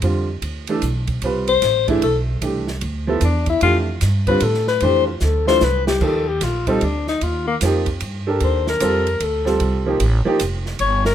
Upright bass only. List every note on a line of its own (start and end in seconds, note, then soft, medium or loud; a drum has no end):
0.02 0.41 F2 medium
0.42 0.81 D2 medium
0.82 1.21 B1 medium
1.22 1.61 C2 medium
1.62 2.01 A1 medium
2.02 2.41 B1 medium
2.41 2.80 C2 medium
2.82 3.21 D2 medium
3.22 3.60 E2 medium
3.62 4.01 F2 medium
4.02 4.41 G2 medium
4.42 4.80 A2 loud
4.82 5.20 F2 medium
5.22 5.60 D2 medium
5.61 6.00 C2 medium
6.01 6.40 D#2 medium
6.41 6.80 A#1 medium
6.82 7.20 D2 medium
7.22 7.60 D#2 medium
7.62 8.00 F2 medium
8.02 8.40 G2 medium
8.41 8.79 D#2 medium
8.81 9.19 F2 medium
9.20 9.59 D2 medium
9.60 9.99 C2 medium
10.00 10.24 A1 medium
10.27 muted upright bass stroke soft
10.41 10.79 F1 medium
10.79 11.15 G1 medium